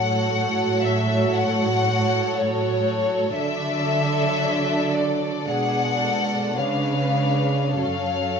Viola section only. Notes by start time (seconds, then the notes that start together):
Already playing: F#3 F#4
3.37 F#3 D4
5.50 G#3 D4
6.57 G#3 D4
7.76 F#3 C#4